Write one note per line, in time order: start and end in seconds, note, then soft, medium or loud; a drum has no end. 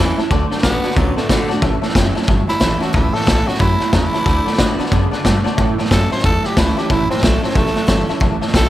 0.00 0.18 E2 medium
0.00 0.29 E2 medium
0.00 0.17 A2 medium
0.00 0.17 E3 loud
0.00 0.17 E3 medium
0.00 0.18 E3 loud
0.00 0.17 A3 medium
0.00 0.18 C#4 loud
0.00 0.16 E4 medium
0.00 0.11 C#5 medium
0.00 0.11 E5 medium
0.00 0.11 A5 loud
0.17 0.30 A2 medium
0.17 0.30 E3 medium
0.17 0.31 C#4 soft
0.17 0.30 E4 medium
0.17 0.26 C#5 loud
0.17 0.26 E5 medium
0.17 0.26 A5 loud
0.17 muted upright bass stroke medium
0.17 snare soft
0.30 0.51 D2 medium
0.30 0.49 D3 medium
0.30 0.62 D3 medium
0.30 0.49 A3 medium
0.30 0.43 D5 loud
0.30 0.43 F#5 loud
0.30 0.44 A5 loud
0.30 kick loud
0.30 snare soft
0.50 0.63 D3 medium
0.50 0.63 A3 medium
0.50 0.59 D5 medium
0.50 0.59 F#5 medium
0.50 0.60 A5 loud
0.50 snare soft
0.57 snare soft
0.63 0.83 A1 medium
0.63 0.83 D3 medium
0.63 0.82 D3 medium
0.63 0.83 A3 medium
0.63 0.96 B3 loud
0.63 0.82 B3 loud
0.63 0.83 D4 medium
0.63 0.83 F#4 medium
0.63 0.76 D5 medium
0.63 0.76 F#5 medium
0.63 0.76 A5 medium
0.63 kick medium
0.63 snare loud
0.63 hi-hat pedal medium
0.84 0.96 D3 medium
0.84 0.96 B3 medium
0.84 0.98 D4 soft
0.84 0.97 F#4 medium
0.84 0.92 D5 medium
0.84 0.92 F#5 medium
0.84 0.92 A5 medium
0.84 muted upright bass stroke medium
0.84 snare soft
0.91 snare soft
0.96 1.16 C#2 medium
0.96 1.61 A2 medium
0.96 1.15 D3 medium
0.96 1.16 F#3 medium
0.96 1.16 B3 medium
0.96 1.09 D5 medium
0.96 1.09 F#5 medium
0.96 1.09 A5 medium
0.96 kick loud
0.96 snare soft
1.16 1.29 D3 medium
1.16 1.31 A3 medium
1.16 1.29 B3 medium
1.16 1.25 D5 medium
1.16 1.25 F#5 medium
1.16 1.25 A5 medium
1.16 muted upright bass stroke medium
1.16 snare soft
1.29 1.48 B1 medium
1.29 1.49 D3 medium
1.29 1.50 A3 medium
1.29 1.49 A3 loud
1.29 1.50 D4 loud
1.29 1.48 F#4 loud
1.29 1.42 D5 medium
1.29 1.42 F#5 medium
1.29 1.42 B5 loud
1.29 kick medium
1.29 snare loud
1.29 hi-hat pedal medium
1.48 1.62 D3 medium
1.48 1.63 A3 medium
1.48 1.63 D4 medium
1.48 1.62 F#4 medium
1.48 1.57 D5 loud
1.48 1.57 F#5 loud
1.48 1.57 A5 loud
1.48 muted upright bass stroke soft
1.48 snare soft
1.62 1.82 A1 medium
1.62 2.26 A2 loud
1.62 1.81 A2 medium
1.62 1.81 E3 loud
1.62 1.75 C#5 loud
1.62 1.75 E5 loud
1.62 1.75 A5 loud
1.62 kick loud
1.62 snare soft
1.81 1.95 A2 medium
1.81 1.95 E3 medium
1.81 1.90 C#5 medium
1.81 1.90 E5 medium
1.81 1.90 A5 loud
1.81 muted upright bass stroke medium
1.81 snare soft
1.89 snare soft
1.94 2.15 F#1 medium
1.94 2.14 A2 medium
1.94 2.15 E3 medium
1.94 2.14 F#3 medium
1.94 2.15 A3 medium
1.94 2.16 C#4 medium
1.94 2.14 E4 medium
1.94 2.07 C#5 medium
1.94 2.08 E5 medium
1.94 2.08 G5 medium
1.94 kick medium
1.94 snare loud
1.94 hi-hat pedal medium
2.15 2.27 A2 medium
2.15 2.27 F#3 medium
2.15 2.29 C#4 medium
2.15 2.28 E4 medium
2.15 2.23 C#5 loud
2.15 2.24 E5 medium
2.15 2.24 A5 loud
2.15 muted upright bass stroke medium
2.15 snare soft
2.22 snare soft
2.28 2.47 G1 medium
2.28 2.92 E2 medium
2.28 2.46 A2 medium
2.28 2.47 F#3 medium
2.28 2.41 C#5 medium
2.28 2.41 E5 medium
2.28 2.41 A5 loud
2.28 kick loud
2.28 snare soft
2.47 2.60 A2 medium
2.47 2.60 F#3 medium
2.47 2.82 E4 loud
2.47 2.56 C#5 medium
2.47 2.56 E5 medium
2.47 2.56 A5 medium
2.47 muted upright bass stroke medium
2.47 snare soft
2.60 2.80 A1 medium
2.60 2.80 A2 medium
2.60 2.80 E3 medium
2.60 2.81 A3 loud
2.60 2.81 C#4 loud
2.60 2.79 E4 loud
2.60 2.73 C#5 medium
2.60 2.73 E5 medium
2.60 2.73 A5 medium
2.60 kick medium
2.60 snare loud
2.60 hi-hat pedal medium
2.80 2.93 A2 medium
2.80 2.93 E3 medium
2.80 2.94 C#4 medium
2.80 2.93 E4 medium
2.80 2.94 F#4 medium
2.80 2.89 C#5 loud
2.80 2.89 E5 medium
2.80 2.89 A5 loud
2.80 muted upright bass stroke medium
2.80 snare soft
2.93 3.14 C#2 medium
2.93 3.57 A2 loud
2.93 3.13 A2 medium
2.93 3.13 E3 medium
2.93 3.15 E4 medium
2.93 3.06 C#5 medium
2.93 3.06 E5 medium
2.93 3.06 A5 loud
2.93 kick loud
2.93 snare soft
3.13 3.26 A2 medium
3.13 3.27 E3 medium
3.13 3.49 A4 medium
3.13 3.22 C#5 medium
3.13 3.22 E5 medium
3.13 3.22 A5 medium
3.13 muted upright bass stroke medium
3.13 snare soft
3.21 snare soft
3.26 3.47 B1 medium
3.26 3.45 A2 medium
3.26 3.46 E3 medium
3.26 3.46 F#3 medium
3.26 3.46 A3 medium
3.26 3.46 C#4 medium
3.26 3.44 E4 medium
3.26 3.39 C#5 medium
3.26 3.39 E5 medium
3.26 3.39 A5 medium
3.26 kick medium
3.26 snare loud
3.26 hi-hat pedal medium
3.46 3.59 A2 medium
3.46 3.60 F#3 medium
3.46 3.60 C#4 soft
3.46 3.59 E4 medium
3.46 3.60 F#4 medium
3.46 3.55 C#5 medium
3.46 3.55 E5 medium
3.46 3.55 A5 medium
3.46 snare soft
3.54 snare soft
3.59 3.80 F#2 medium
3.59 3.78 A2 medium
3.59 3.92 B2 medium
3.59 3.79 F#3 medium
3.59 3.92 E4 loud
3.59 3.72 C#5 medium
3.59 3.72 E5 medium
3.59 3.72 G5 medium
3.59 kick loud
3.59 snare soft
3.79 3.92 A2 medium
3.79 3.93 F#3 medium
3.79 3.88 C#5 medium
3.79 3.88 E5 medium
3.79 3.88 A5 medium
3.79 muted upright bass stroke medium
3.79 snare soft
3.93 4.13 E2 medium
3.93 4.12 A2 medium
3.93 4.25 C#3 medium
3.93 4.12 E3 medium
3.93 4.90 E4 loud
3.93 4.05 C#5 medium
3.93 4.05 E5 medium
3.93 4.05 A5 loud
3.93 kick medium
3.93 snare loud
3.93 hi-hat pedal medium
4.13 4.25 A2 medium
4.13 4.25 E3 medium
4.13 4.21 C#5 medium
4.13 4.21 E5 medium
4.13 4.21 A5 loud
4.13 muted upright bass stroke medium
4.13 snare soft
4.25 4.45 D2 medium
4.25 4.58 D3 medium
4.25 4.44 D3 medium
4.25 4.45 A3 medium
4.25 4.38 D5 loud
4.25 4.38 F#5 medium
4.25 4.38 A5 loud
4.25 kick loud
4.25 snare soft
4.46 4.58 D3 medium
4.46 4.58 A3 medium
4.46 4.54 D5 medium
4.46 4.54 F#5 medium
4.46 4.54 A5 loud
4.46 snare soft
4.53 snare soft
4.58 4.78 A2 medium
4.58 4.78 D3 medium
4.58 4.79 A3 medium
4.58 4.78 B3 loud
4.58 4.79 D4 medium
4.58 4.78 F#4 medium
4.58 4.71 D5 medium
4.58 4.71 F#5 medium
4.58 4.71 A5 medium
4.58 kick medium
4.58 snare loud
4.58 hi-hat pedal medium
4.78 4.91 D3 medium
4.78 4.91 B3 medium
4.78 4.92 D4 medium
4.78 4.91 F#4 medium
4.78 4.87 D5 loud
4.78 4.87 F#5 medium
4.78 4.87 A5 loud
4.78 muted upright bass stroke medium
4.78 snare soft
4.86 snare soft
4.92 5.11 F#2 medium
4.92 5.24 C#3 medium
4.92 5.10 D3 medium
4.92 5.10 B3 medium
4.92 5.04 D5 medium
4.92 5.04 F#5 medium
4.92 5.05 A5 loud
4.92 kick loud
4.92 snare soft
5.11 5.23 D3 medium
5.11 5.24 B3 medium
5.11 5.20 D5 medium
5.11 5.20 F#5 medium
5.11 5.20 A5 medium
5.11 muted upright bass stroke medium
5.11 snare soft
5.24 5.44 G2 medium
5.24 5.57 B2 medium
5.24 5.43 D3 medium
5.24 5.43 A3 medium
5.24 5.37 D5 loud
5.24 5.37 F#5 loud
5.24 5.37 A5 loud
5.24 kick medium
5.24 snare loud
5.24 hi-hat pedal medium
5.44 5.56 D3 medium
5.44 5.57 A3 medium
5.44 5.52 D5 loud
5.44 5.53 F#5 loud
5.44 5.53 A5 loud
5.44 muted upright bass stroke medium
5.44 snare soft
5.57 5.77 A2 medium
5.57 5.76 A2 medium
5.57 6.22 A2 loud
5.57 5.76 E3 medium
5.57 5.69 C#5 loud
5.57 5.70 E5 loud
5.57 5.70 A5 loud
5.57 kick loud
5.57 snare soft
5.78 5.90 A2 medium
5.78 5.90 E3 medium
5.78 5.86 C#5 medium
5.78 5.86 E5 medium
5.78 5.86 A5 loud
5.78 muted upright bass stroke medium
5.78 snare soft
5.85 snare soft
5.91 6.10 F#2 loud
5.91 6.09 A2 medium
5.91 6.10 E3 medium
5.91 6.09 F#3 medium
5.91 6.10 A3 medium
5.91 6.11 C#4 medium
5.91 6.10 E4 medium
5.91 6.11 A4 medium
5.91 6.03 C#5 medium
5.91 6.03 E5 medium
5.91 6.04 A5 medium
5.91 kick medium
5.91 snare loud
5.91 hi-hat pedal medium
6.11 6.23 A2 medium
6.11 6.23 F#3 medium
6.11 6.25 C#4 soft
6.11 6.23 E4 medium
6.11 6.24 C5 medium
6.11 6.19 C#5 medium
6.11 6.19 E5 medium
6.11 6.19 A5 medium
6.11 muted upright bass stroke medium
6.11 snare soft
6.18 snare soft
6.23 6.43 E2 medium
6.23 6.87 E2 medium
6.23 6.42 A2 medium
6.23 6.43 F#3 loud
6.23 6.47 A4 loud
6.23 6.36 C#5 medium
6.23 6.36 E5 medium
6.23 6.36 A5 medium
6.23 kick loud
6.23 snare soft
6.44 6.56 A2 medium
6.44 6.57 F#3 medium
6.44 6.57 G4 medium
6.44 6.52 C#5 medium
6.44 6.52 E5 medium
6.44 6.52 A5 medium
6.44 muted upright bass stroke medium
6.44 snare soft
6.57 6.76 C#2 medium
6.57 6.75 A2 medium
6.57 6.76 E3 medium
6.57 6.76 E3 loud
6.57 6.77 A3 medium
6.57 6.77 C#4 loud
6.57 6.79 E4 medium
6.57 6.76 E4 loud
6.57 6.69 C#5 medium
6.57 6.69 E5 medium
6.57 6.69 A5 loud
6.57 kick medium
6.57 snare loud
6.57 hi-hat pedal medium
6.76 6.89 A2 medium
6.76 6.90 E3 medium
6.76 6.90 C#4 medium
6.76 6.89 E4 medium
6.76 6.92 G4 medium
6.76 6.84 C#5 loud
6.76 6.85 E5 medium
6.76 6.85 A5 loud
6.76 muted upright bass stroke medium
6.76 snare soft
6.89 7.09 A1 medium
6.89 7.53 A2 medium
6.89 7.09 A2 medium
6.89 7.09 E3 medium
6.89 7.10 E4 loud
6.89 7.02 C#5 medium
6.89 7.02 E5 medium
6.89 7.02 A5 loud
6.89 kick loud
6.89 snare soft
7.10 7.22 A2 medium
7.10 7.22 E3 medium
7.10 7.25 C4 medium
7.10 7.18 C#5 medium
7.10 7.18 E5 medium
7.10 7.18 A5 medium
7.10 muted upright bass stroke medium
7.10 snare soft
7.18 snare soft
7.22 7.42 B1 medium
7.22 7.41 A2 medium
7.22 7.42 E3 medium
7.22 7.41 F#3 medium
7.22 7.42 A3 loud
7.22 7.43 A3 medium
7.22 7.43 C#4 medium
7.22 7.41 E4 medium
7.22 7.35 C#5 medium
7.22 7.35 E5 medium
7.22 7.35 A5 medium
7.22 kick medium
7.22 snare loud
7.22 hi-hat pedal medium
7.42 7.54 A2 medium
7.42 7.55 F#3 medium
7.42 7.57 C4 medium
7.42 7.56 C#4 soft
7.42 7.55 E4 medium
7.42 7.51 C#5 medium
7.42 7.51 E5 medium
7.42 7.51 A5 medium
7.42 muted upright bass stroke medium
7.42 snare soft
7.49 snare soft
7.55 7.75 A1 medium
7.55 8.19 E2 medium
7.55 7.74 A2 medium
7.55 7.74 F#3 medium
7.55 8.20 A3 loud
7.55 7.68 C#5 medium
7.55 7.68 E5 medium
7.55 7.68 A5 medium
7.55 kick loud
7.55 snare soft
7.66 snare soft
7.75 7.87 A2 medium
7.75 7.88 F#3 medium
7.75 7.84 C#5 medium
7.75 7.84 E5 medium
7.75 7.84 A5 medium
7.75 muted upright bass stroke medium
7.75 snare soft
7.87 8.08 G1 medium
7.87 8.07 A2 medium
7.87 8.07 E3 loud
7.87 8.08 E3 loud
7.87 8.08 A3 loud
7.87 8.08 C#4 loud
7.87 8.06 E4 loud
7.87 8.01 C#5 medium
7.87 8.01 E5 medium
7.87 8.01 A5 loud
7.87 kick medium
7.87 snare loud
7.87 hi-hat pedal medium
8.07 8.20 A2 medium
8.07 8.20 E3 medium
8.07 8.21 C#4 medium
8.07 8.20 E4 medium
8.07 8.17 C#5 loud
8.07 8.17 E5 loud
8.07 8.17 A5 loud
8.07 muted upright bass stroke medium
8.07 snare soft
8.20 8.41 A1 medium
8.20 8.69 A2 loud
8.20 8.40 A2 medium
8.20 8.40 E3 loud
8.20 8.34 C#5 loud
8.20 8.34 E5 loud
8.20 8.34 A5 loud
8.20 kick loud
8.20 snare soft
8.41 8.53 A2 medium
8.41 8.54 E3 medium
8.41 8.49 C#5 medium
8.41 8.50 E5 medium
8.41 8.50 A5 loud
8.41 muted upright bass stroke medium
8.41 snare soft
8.47 snare soft
8.53 8.69 B1 loud
8.53 8.69 A2 medium
8.53 8.69 E3 medium
8.53 8.69 F#3 medium
8.53 8.69 A3 medium
8.53 8.69 C#4 medium
8.53 8.69 E4 medium
8.53 8.69 A4 medium
8.53 8.66 C#5 medium
8.53 8.66 E5 medium
8.53 8.67 G5 medium
8.53 kick medium
8.53 snare loud
8.53 hi-hat pedal medium